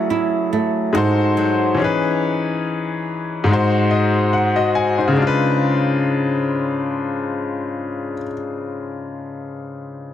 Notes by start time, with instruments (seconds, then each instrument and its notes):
Already playing: grand piano F#3 C#4 G#4 A4 D5 E5 B5, nylon-string guitar F#3 A3
0.10 nylon-string guitar E4
0.53 nylon-string guitar A3
0.93 nylon-string guitar G#2, grand piano G#3 D#4 F#4 A4
0.97 grand piano C5
1.37 nylon-string guitar F#3
1.74 grand piano E3 C#4
1.79 grand piano D#4 G#4
1.84 grand piano B4
3.44 grand piano G#2 G#3
3.49 grand piano D#4 F#4
3.53 grand piano C5
3.91 grand piano D#5
4.33 grand piano F#5
4.56 grand piano F#4 D#5
4.75 grand piano G#5
4.98 grand piano D#4 C5
5.08 grand piano C#3
5.12 grand piano G#3
5.17 grand piano D4
5.22 grand piano F4
5.27 grand piano B4